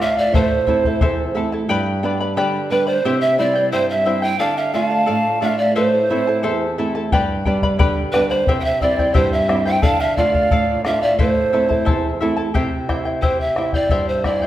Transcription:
Already playing: nylon-string guitar A2
0.00 nylon-string guitar A3 D4 F4, charango A4 D5 F5, pan flute E5, quena F5
0.17 pan flute D5, charango D5 F5, quena E5
0.33 nylon-string guitar A2, charango E4 A4 C5 E5 A5, pan flute C5, quena C5, bombo low
0.67 nylon-string guitar A3 C4 E4, charango E4 A4 E5 A5, bombo low
0.85 charango E4 A4 A5, bombo low
1.01 nylon-string guitar E2, charango E4 A4 C5 E5 A5, bombo low
1.35 nylon-string guitar A3 C4 E4, charango E4 A4 E5 A5
1.52 charango E4 A4 A5
1.69 nylon-string guitar G2, charango G4 B4 D5 G5 B5
2.03 nylon-string guitar G3 B3 D4, charango B4 D5 G5 B5
2.20 charango B4 D5 B5
2.37 nylon-string guitar D3, charango G4 B4 D5 G5 B5
2.71 nylon-string guitar G3 B3 D4, quena B4, pan flute B4, charango B4 D5 G5 B5
2.86 charango B4 D5 B5, pan flute C5, quena D5
2.93 quena C5
3.05 nylon-string guitar C3, charango E4 G4 C5 E5 G5
3.21 pan flute E5, quena E5
3.38 nylon-string guitar G3 C4 E4, charango E4 C5 E5 G5, pan flute D5, quena E5
3.42 quena D5
3.55 charango E4 C5 G5
3.72 nylon-string guitar G2, charango E4 G4 C5 E5 G5, quena C5, pan flute C5
3.90 pan flute E5, quena F5
3.94 quena E5
4.05 nylon-string guitar G3 C4 E4, charango E4 C5 E5 G5
4.22 charango E4 C5 G5, pan flute G5, quena G5
4.39 nylon-string guitar D3, charango A4 D5 F5, pan flute F5, quena A5
4.57 pan flute E5, quena F5
4.73 nylon-string guitar A3 D4 F4, charango A4 D5 F5, pan flute E5, quena G#5
4.85 pan flute F5, quena A5
4.90 charango D5 F5
5.06 nylon-string guitar A2, charango A4 D5 F5
5.41 nylon-string guitar A3 D4 F4, charango A4 D5 F5, pan flute E5, quena F5
5.58 pan flute D5, charango D5 F5, quena E5
5.76 nylon-string guitar A2, charango E4 A4 C5 E5 A5, pan flute C5, quena C5
6.10 nylon-string guitar A3 C4 E4, charango E4 A4 E5 A5
6.27 charango E4 A4 A5
6.43 nylon-string guitar E2, charango E4 A4 C5 E5 A5
6.78 nylon-string guitar A3 C4 E4, charango E4 A4 E5 A5
6.95 charango E4 A4 A5
7.12 nylon-string guitar G2, charango G4 B4 D5 G5 B5, bombo low
7.45 nylon-string guitar G3 B3 D4, charango B4 D5 G5 B5, bombo low
7.62 charango B4 D5 B5, bombo low
7.79 nylon-string guitar D3, charango G4 B4 D5 G5 B5, bombo low
8.12 nylon-string guitar G3 B3 D4, pan flute B4, charango B4 D5 G5 B5, quena B4, bombo rim
8.30 charango B4 D5 B5, pan flute C5, quena C5
8.47 nylon-string guitar C3, charango E4 G4 C5 E5 G5, bombo low
8.60 quena E5 G5, pan flute G5
8.65 pan flute E5
8.80 nylon-string guitar G3 C4 E4, charango E4 C5 E5 G5, pan flute D5, quena D5 E5, bombo low
8.99 charango E4 C5 G5, bombo low
9.13 nylon-string guitar G2, charango E4 G4 C5 E5 G5, quena C5, pan flute C5, bombo low
9.31 pan flute E5, quena F5
9.36 quena E5
9.48 nylon-string guitar G3 C4 E4, charango E4 C5 E5 G5, bombo rim
9.65 charango E4 C5 G5, quena G5, pan flute G5
9.82 nylon-string guitar D3, charango A4 D5 F5, pan flute F5, quena A5, bombo low
10.00 pan flute E5, quena F5
10.17 nylon-string guitar A3 D4 F4, charango A4 D5 F5, pan flute D5, quena F5 G5, bombo low
10.34 charango D5 F5, bombo low
10.51 nylon-string guitar A2, charango A4 D5 F5, bombo low
10.84 nylon-string guitar A3 D4 F4, charango A4 D5 F5, pan flute E5, quena F5, bombo rim
11.01 pan flute D5, charango D5 F5, quena E5
11.18 nylon-string guitar A2, charango E4 A4 C5 E5 A5, quena C5, pan flute C5, bombo low
11.53 nylon-string guitar A3 C4 E4, charango E4 A4 E5 A5
11.69 charango E4 A4 A5, bombo low
11.85 nylon-string guitar E2, charango E4 A4 C5 E5 A5, bombo low
12.21 nylon-string guitar A3 C4 E4, charango E4 A4 E5 A5
12.37 charango E4 A4 A5
12.54 nylon-string guitar C3, charango E4 G4 C5 E5 G5, bombo low
12.89 charango E4 C5 E5 G5, nylon-string guitar E4, bombo rim, bombo low
13.05 charango E4 C5 G5
13.22 charango E4 G4 C5 E5 G5, nylon-string guitar G4, pan flute C5, bombo low
13.40 pan flute E5
13.56 charango E4 C5 E5 G5, nylon-string guitar E4, bombo rim
13.73 charango E4 C5 G5, pan flute D5, bombo low
13.89 nylon-string guitar G2, charango E4 G4 C5 E5 G5, bombo low
14.09 pan flute C5
14.24 charango E4 C5 E5 G5, nylon-string guitar E4, pan flute D5, bombo rim, bombo low
14.42 charango E4 C5 G5

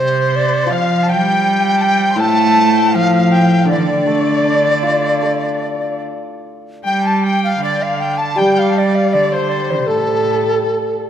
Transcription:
Already playing: cello C3, erhu C5
0.00 dizi C5
0.36 dizi D5
0.66 hammered dulcimer F3, cello F3, erhu F5
0.73 dizi F5
1.03 cello G3, erhu A5
1.09 erhu G5, dizi G5
1.77 erhu A5
1.82 erhu G5
2.12 hammered dulcimer A2, cello A3, erhu C6
2.17 erhu A5, dizi A5
2.74 erhu G5
2.91 cello F3, erhu F5
2.95 dizi F5
3.32 dizi G5
3.65 hammered dulcimer D3, cello D3, erhu D5
3.71 dizi D5
4.06 hammered dulcimer A3
4.45 hammered dulcimer D4
4.83 hammered dulcimer F4
5.22 hammered dulcimer A4
6.84 cello G3, erhu G5, dizi G5
7.04 erhu A5, dizi A5
7.17 erhu A5
7.23 erhu G5, dizi G5
7.44 dizi F5
7.60 cello D3, erhu D5 F5, dizi D5
7.73 erhu G5
7.81 erhu F5, dizi F5
8.00 dizi G5
8.18 dizi A5, erhu A5
8.36 hammered dulcimer G3, dizi G5, erhu G5
8.40 cello G3
8.55 erhu F6 G6
8.59 dizi F5, erhu D6
8.69 erhu F5 G5 A5
8.78 erhu D5, dizi D5
8.95 dizi F5
9.13 cello D3, dizi D5, erhu D5
9.32 erhu C5, dizi C5
9.49 dizi D5
9.70 cello C3, dizi C5
9.87 dizi A4, erhu A4
9.92 cello A2

